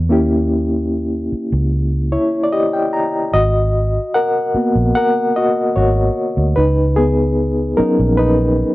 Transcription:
0.00 0.11 E2 loud
0.09 1.28 D#2 medium
0.09 3.29 A#3 medium
0.09 3.29 C#4 medium
0.09 2.11 E4 medium
0.09 2.52 G4 medium
1.32 muted fingered electric bass stroke soft
1.52 2.15 C#2 medium
2.12 2.43 E4 medium
2.12 2.43 C#5 medium
2.44 2.52 D5 medium
2.52 3.30 G4 medium
2.52 3.32 D#5 loud
2.73 2.92 G5 medium
2.93 3.31 A#5 medium
3.34 3.97 G#1 medium
3.34 4.11 F#4 medium
3.34 4.17 D#5 loud
4.14 4.92 A#4 medium
4.14 4.94 F#5 loud
4.54 5.08 A#3 soft
4.54 5.09 B3 soft
4.54 5.09 F#4 medium
4.54 muted fingered electric bass stroke soft
4.75 4.91 A#1 medium
4.95 5.34 A#4 medium
4.95 5.37 F#5 loud
5.36 5.74 F#4 medium
5.36 5.73 D#5 medium
5.76 6.08 G#1 medium
5.76 6.53 F#4 medium
5.76 6.59 C#5 medium
6.37 6.53 D2 medium
6.56 7.74 C#2 loud
6.56 6.95 D#4 medium
6.56 6.98 B4 medium
6.96 7.74 B3 medium
6.96 7.73 G#4 medium
7.77 8.75 F#3 medium
7.77 8.75 B3 soft
7.77 8.16 C#4 medium
7.77 8.18 D#4 medium
7.77 8.15 A#4 medium
7.77 muted fingered electric bass stroke soft
7.99 8.62 A#1 loud
8.17 8.75 D#4 medium
8.17 8.75 B4 medium

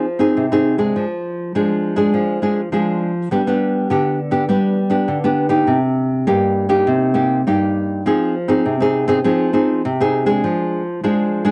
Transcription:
0.00 0.33 F3 medium
0.19 0.45 C4 medium
0.19 0.45 D#4 soft
0.19 0.46 G#4 medium
0.37 0.93 C3 medium
0.52 0.76 C4 medium
0.52 0.76 D#4 medium
0.52 0.77 G#4 medium
0.78 1.04 G#3 medium
0.78 1.04 D4 medium
0.78 1.05 G#4 medium
0.96 1.52 F3 medium
1.55 2.11 F3 medium
1.55 1.95 G#3 medium
1.55 1.94 D4 soft
1.55 1.95 G#4 soft
1.96 2.37 G#3 medium
1.96 2.37 D4 medium
1.96 2.38 G#4 medium
2.14 2.70 F3 medium
2.42 2.60 G#3 soft
2.42 2.60 D4 soft
2.42 2.60 G#4 medium
2.72 3.29 F3 medium
2.72 3.11 G#3 soft
2.72 3.11 D4 soft
2.72 3.11 G#4 soft
3.31 3.88 G3 medium
3.31 3.41 B3 medium
3.31 3.41 D4 soft
3.31 3.41 G4 soft
3.47 3.87 B3 soft
3.47 3.87 D4 medium
3.47 3.87 G4 medium
3.90 4.47 D3 medium
3.90 4.18 B3 soft
3.90 4.19 D4 soft
3.90 4.19 G4 soft
4.31 4.44 B3 soft
4.31 4.44 D4 medium
4.31 4.44 G4 medium
4.49 5.06 G3 medium
4.49 4.78 B3 soft
4.49 4.78 D4 soft
4.49 4.78 G4 medium
4.90 5.17 B3 medium
4.90 5.18 D4 medium
4.90 5.18 G4 medium
5.08 5.65 D3 medium
5.24 5.49 B3 medium
5.24 5.49 D4 medium
5.24 5.49 G4 medium
5.49 5.77 A#3 medium
5.49 5.77 D#4 medium
5.49 5.77 G4 medium
5.67 6.25 C3 medium
6.27 6.84 G2 medium
6.27 6.67 A#3 medium
6.27 6.68 D#4 soft
6.27 6.68 G4 medium
6.69 7.11 A#3 medium
6.69 7.11 D#4 medium
6.69 7.11 G4 medium
6.87 7.44 C3 medium
7.14 7.41 A#3 medium
7.14 7.41 D#4 soft
7.14 7.41 G4 medium
7.47 8.03 G2 medium
7.47 8.01 A#3 medium
7.47 8.02 D#4 medium
7.47 8.02 G4 medium
8.06 8.62 F3 medium
8.06 8.34 C4 medium
8.06 8.34 D#4 soft
8.06 8.34 G#4 medium
8.48 8.74 C4 medium
8.48 8.74 D#4 medium
8.48 8.75 G#4 medium
8.66 9.22 C3 medium
8.81 9.05 C4 medium
8.81 9.06 D#4 medium
8.81 9.06 G#4 medium
9.08 9.19 C4 medium
9.08 9.19 D#4 medium
9.08 9.19 G#4 medium
9.24 9.81 F3 medium
9.24 9.49 C4 medium
9.24 9.50 D#4 soft
9.24 9.50 G#4 medium
9.53 9.81 C4 medium
9.53 9.82 D#4 soft
9.53 9.82 G#4 medium
9.85 10.41 C3 medium
10.00 10.24 C4 medium
10.00 10.25 D#4 medium
10.00 10.25 G#4 medium
10.26 10.81 G#3 medium
10.26 10.81 D4 medium
10.26 10.82 G#4 medium
10.44 11.00 F3 medium
11.04 11.51 F3 medium
11.04 11.43 G#3 medium
11.04 11.43 D4 medium
11.04 11.43 G#4 medium
11.45 11.51 G#3 medium
11.45 11.51 D4 medium
11.45 11.51 G#4 medium

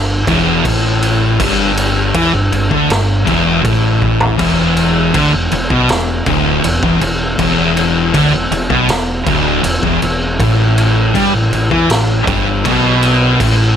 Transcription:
0.00 0.24 G1 medium
0.00 0.20 G2 medium
0.27 0.62 E1 loud
0.27 0.64 E2 loud
0.27 kick loud
0.27 crash medium
0.65 1.36 A1 loud
0.65 1.39 A2 loud
0.65 kick loud
0.65 crash medium
1.03 crash medium
1.40 2.11 G1 medium
1.40 2.13 G2 loud
1.40 kick loud
1.40 crash medium
1.77 crash medium
2.14 2.32 E2 loud
2.14 2.32 E3 loud
2.14 kick loud
2.14 crash medium
2.32 2.50 G1 medium
2.32 2.51 G2 medium
2.52 2.69 G1 medium
2.52 2.71 G2 medium
2.52 crash medium
2.70 2.88 D2 medium
2.70 2.88 D3 medium
2.70 kick loud
2.88 3.24 G1 medium
2.88 3.19 G2 medium
2.88 snare loud
2.88 crash medium
3.25 3.62 E1 medium
3.25 3.62 E2 loud
3.25 kick loud
3.25 crash medium
3.63 4.35 A1 loud
3.63 4.38 A2 loud
3.63 kick loud
3.63 crash medium
4.02 kick medium
4.21 floor tom medium
4.38 5.10 E1 medium
4.38 5.13 E2 loud
4.38 kick loud
4.38 crash loud
4.77 crash medium
5.14 5.32 D2 loud
5.14 5.32 D3 loud
5.14 kick loud
5.14 crash medium
5.33 5.51 E1 medium
5.33 5.51 E2 medium
5.52 5.70 E1 medium
5.52 5.71 E2 medium
5.52 crash medium
5.70 5.88 B1 loud
5.70 5.88 B2 medium
5.70 kick loud
5.89 6.24 E1 medium
5.89 6.20 E2 medium
5.89 snare loud
5.89 crash medium
6.26 6.62 D1 medium
6.26 6.63 D2 medium
6.26 kick loud
6.26 crash medium
6.64 6.82 E1 medium
6.64 6.82 E2 medium
6.64 crash medium
6.83 7.00 E1 medium
6.83 7.01 E2 loud
6.83 kick loud
7.01 7.36 E1 medium
7.01 7.32 E2 medium
7.01 crash medium
7.39 8.10 E1 medium
7.39 8.13 E2 loud
7.39 kick loud
7.39 crash medium
7.77 crash medium
8.14 8.31 D2 medium
8.14 8.32 D3 loud
8.14 kick loud
8.14 crash medium
8.32 8.50 E1 medium
8.32 8.50 E2 medium
8.51 8.69 E1 medium
8.51 8.71 E2 medium
8.51 crash medium
8.70 8.88 B1 medium
8.70 8.88 B2 medium
8.70 kick loud
8.88 9.24 E1 medium
8.88 9.19 E2 medium
8.88 snare loud
8.88 crash medium
9.26 9.62 D1 loud
9.26 9.63 D2 medium
9.26 kick loud
9.26 crash medium
9.63 9.82 E1 medium
9.63 9.82 E2 medium
9.63 crash medium
9.83 10.01 E1 medium
9.83 10.01 E2 loud
9.83 kick loud
10.02 10.37 E1 medium
10.02 10.32 E2 medium
10.02 crash medium
10.39 11.11 A1 medium
10.39 11.13 A2 loud
10.39 kick loud
10.39 crash medium
10.78 crash medium
11.14 11.32 G2 loud
11.14 11.32 G3 loud
11.14 kick loud
11.14 crash medium
11.33 11.51 A1 medium
11.33 11.51 A2 medium
11.52 11.70 A1 medium
11.52 11.71 A2 medium
11.52 crash medium
11.71 11.88 E2 loud
11.71 11.89 E3 medium
11.71 kick loud
11.89 12.25 A1 medium
11.89 12.20 A2 medium
11.89 snare loud
11.89 crash medium
12.27 12.62 G1 medium
12.27 12.63 G2 loud
12.27 kick loud
12.27 crash medium
12.64 13.36 B1 loud
12.64 13.38 B2 loud
12.64 kick loud
12.64 crash medium
13.03 crash medium
13.40 13.76 A1 medium
13.40 13.76 A2 loud
13.40 kick loud
13.40 crash medium

